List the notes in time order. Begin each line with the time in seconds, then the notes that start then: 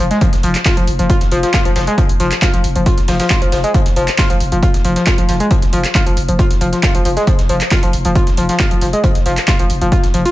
0.00 F1
0.11 G#3, snare, closed hi-hat
0.21 F3, kick, closed hi-hat
0.33 F1, snare, closed hi-hat
0.43 F1 F3, closed hi-hat, open hi-hat
0.55 snare, clap, closed hi-hat
0.65 F4, kick, snare, clap, closed hi-hat, open hi-hat
0.77 F1 F3, closed hi-hat
0.88 F1, closed hi-hat, open hi-hat
0.99 F1 F3, closed hi-hat
1.10 F4, kick, closed hi-hat
1.21 F1, snare, closed hi-hat
1.32 F1 F3, closed hi-hat, open hi-hat
1.43 F3, snare, closed hi-hat
1.54 F4, kick, snare, clap, closed hi-hat
1.65 F1 F3, closed hi-hat
1.76 F1 F3, snare, open hi-hat
1.87 G#3, closed hi-hat
1.98 F3, kick, closed hi-hat
2.09 F1, closed hi-hat
2.20 F1 F3, closed hi-hat, open hi-hat
2.31 snare, clap, closed hi-hat
2.42 F4, kick, snare, clap, closed hi-hat
2.54 F1 F3, closed hi-hat
2.64 F1, closed hi-hat, open hi-hat
2.76 F1 F3, closed hi-hat
2.86 F4, kick, closed hi-hat
2.98 F1, snare, closed hi-hat
3.08 F1 F3, snare, open hi-hat
3.20 F3, snare, closed hi-hat, open hi-hat
3.30 F4, kick, snare, clap, closed hi-hat
3.42 F1 F3, closed hi-hat
3.52 F1 F3, snare, open hi-hat
3.64 G#3, closed hi-hat
3.74 F3, kick, closed hi-hat
3.86 F1, snare, closed hi-hat
3.96 F1 F3, closed hi-hat, open hi-hat
4.08 snare, clap, closed hi-hat
4.18 F4, kick, snare, clap, closed hi-hat, open hi-hat
4.30 F1 F3, closed hi-hat
4.40 F1, closed hi-hat, open hi-hat
4.52 F1 F3, closed hi-hat
4.63 F4, kick, closed hi-hat
4.74 F1, snare, closed hi-hat
4.85 F1 F3, closed hi-hat, open hi-hat
4.96 F3, snare, closed hi-hat
5.07 F4, kick, snare, clap, closed hi-hat
5.18 F1 F3, closed hi-hat
5.29 F1 F3, snare, closed hi-hat, open hi-hat
5.40 G#3, closed hi-hat
5.51 F3, kick, closed hi-hat
5.62 F1, snare, closed hi-hat
5.73 F1 F3, closed hi-hat, open hi-hat
5.84 snare, clap, closed hi-hat
5.95 F4, kick, snare, clap, closed hi-hat
6.06 F1 F3, closed hi-hat
6.17 F1, closed hi-hat, open hi-hat
6.29 F1 F3, closed hi-hat
6.39 F4, kick, closed hi-hat
6.50 F1, snare, closed hi-hat
6.61 F1 F3, closed hi-hat, open hi-hat
6.73 F3, snare, closed hi-hat
6.83 F4, kick, snare, clap, closed hi-hat
6.95 F1 F3, closed hi-hat
7.05 F1 F3, closed hi-hat, open hi-hat
7.17 G#3, snare, closed hi-hat
7.27 F3, kick, closed hi-hat
7.39 F1, snare, closed hi-hat
7.49 F1 F3, closed hi-hat, open hi-hat
7.61 snare, clap, closed hi-hat
7.71 F4, kick, snare, clap, closed hi-hat, open hi-hat
7.83 F1 F3, closed hi-hat
7.93 F1, closed hi-hat, open hi-hat
8.05 F1 F3, closed hi-hat
8.15 F4, kick, closed hi-hat
8.27 F1, snare, closed hi-hat
8.37 F1 F3, closed hi-hat, open hi-hat
8.49 F3, snare, closed hi-hat
8.60 F4, kick, snare, clap, closed hi-hat
8.71 F1 F3, closed hi-hat
8.81 F1 F3, snare, closed hi-hat, open hi-hat
8.93 G#3, closed hi-hat
9.04 F3, kick, closed hi-hat
9.15 F1, snare, closed hi-hat
9.26 F1 F3, closed hi-hat, open hi-hat
9.37 snare, clap, closed hi-hat
9.48 F4, kick, snare, clap, closed hi-hat
9.59 F1 F3, closed hi-hat
9.70 F1, closed hi-hat, open hi-hat
9.81 F1 F3, closed hi-hat
9.92 F4, kick, closed hi-hat
10.04 F1, snare, closed hi-hat
10.14 F1 F3, closed hi-hat, open hi-hat
10.25 F4, closed hi-hat